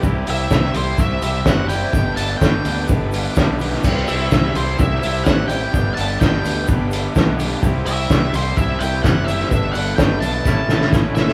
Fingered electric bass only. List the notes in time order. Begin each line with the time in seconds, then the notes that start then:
0.04 C2
0.28 C2
0.51 C2
0.74 C2
0.98 C2
1.22 C2
1.46 F#1
1.93 G1
2.17 G1
2.41 G1
2.66 D2
2.90 G1
3.37 B1
3.84 C2
4.10 C2
4.55 C2
4.80 C2
5.04 C2
5.27 A1
5.74 G1
5.99 G1
6.22 G1
6.45 D2
6.69 G1
7.16 B1
7.63 C2
7.87 C2
8.10 C2
8.33 C2
8.58 C2
8.81 C2
9.04 F#1
9.52 G1
9.75 G1
9.99 G1
10.21 B1
10.46 A1
10.92 A1